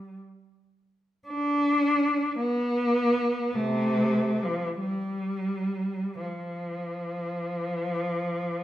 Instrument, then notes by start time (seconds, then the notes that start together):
cello
Already playing: G3
1.27 D4
2.40 B3
3.55 C3 A3
4.44 F3
4.79 G3
6.23 F3